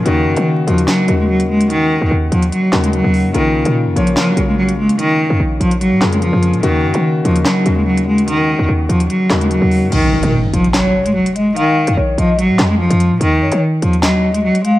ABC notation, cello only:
X:1
M:4/4
L:1/16
Q:1/4=146
K:Bbm
V:1 name="Cello" clef=bass
E,4 z2 F,2 G,3 A, G,2 A,2 | E,4 z2 F,2 G,3 A, G,4 | E,4 z2 F,2 G,3 A, G,2 A,2 | E,4 z2 F,2 G,3 A, F,4 |
E,4 z2 F,2 G,3 A, G,2 A,2 | E,4 z2 F,2 G,3 A, G,4 | E,4 z2 F,2 G,3 A, G,2 A,2 | E,4 z2 F,2 G,3 A, F,4 |
E,4 z2 F,2 G,3 A, G,2 A,2 |]